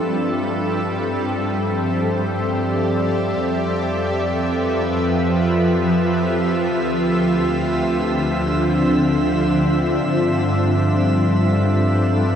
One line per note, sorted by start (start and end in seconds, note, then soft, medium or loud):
0.00 12.36 F3 medium
0.00 3.42 G3 medium
0.00 12.36 C4 medium
0.00 1.44 D4 medium
0.00 0.10 F4 medium
0.00 8.09 A4 medium
0.00 3.43 E5 medium
0.00 3.41 E6 medium
0.10 3.37 G2 medium
0.27 8.09 G4 medium
0.64 3.44 C5 medium
1.37 10.09 E5 medium
1.59 4.75 D5 medium
3.42 6.69 F2 medium
3.42 6.76 F3 medium
3.42 12.36 E5 medium
3.42 12.36 E6 medium
3.77 11.34 F4 medium
3.77 6.75 B4 medium
6.74 10.03 D2 medium
6.74 10.08 D3 medium
7.10 12.36 D4 medium
7.53 10.09 C5 medium
10.07 12.36 G2 medium
10.07 12.36 G3 medium
10.38 12.36 A4 medium
11.17 12.36 B4 medium
11.58 12.36 F4 medium